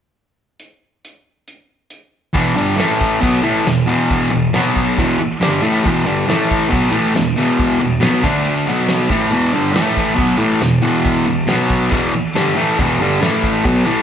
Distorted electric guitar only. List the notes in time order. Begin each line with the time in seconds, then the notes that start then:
2.33 E2 B2 E3
2.55 G2 D3 G3
2.76 A2 E3 A3
3.21 B2 F#3 B3
3.42 A2 E3 A3
3.65 E2 B2
3.86 E2 B2 E3
4.31 E2 B2
4.53 B2 F#3 B3
4.98 E2 B2 E3
5.20 muted distorted electric guitar stroke
5.41 G2 D3 G3
5.62 A2 E3 A3
5.83 E2 B2 E3
6.05 G2 D3 G3
6.27 A2 E3 A3
6.70 B2 F#3 B3
6.91 A2 E3 A3
7.15 E2 B2
7.36 E2 B2 E3
7.80 E2 B2
8.00 B2 F#3 B3
8.24 D3 A3 D4
8.67 B2 F#3 B3
9.09 A2 E3 A3
9.30 E2 B2 E3
9.53 G2 D3 G3
9.74 A2 E3 A3
10.15 B2 F#3 B3
10.38 A2 E3 A3
10.61 E2 B2
10.82 E2 B2 E3
11.26 E2 B2
11.47 B2 F#3 B3
11.91 E2 B2 E3
12.14 muted distorted electric guitar stroke
12.35 G2 D3 G3
12.55 A2 E3 A3
12.79 E2 B2 E3
13.00 G2 D3 G3
13.21 A2 E3 A3
13.65 B2 F#3 B3
13.85 A2 E3 A3